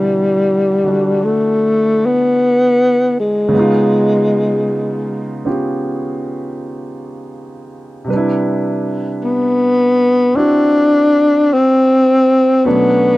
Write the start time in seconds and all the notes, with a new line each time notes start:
Already playing: B2 D3 E3 G3 B3 E4
0.84 D3 F#4
0.88 D4
1.24 A3
2.06 B3
3.20 G#3
3.49 C#3 G#3
3.54 B3 D#4
3.59 F4
5.45 B3 C#4 F4 G4
8.05 C3 G3
8.10 D4 B4
8.16 E4
9.24 B3
10.35 C4 D4 E4 F#4
11.53 C4
12.65 B2 F#3 A3 B3 C#4 D4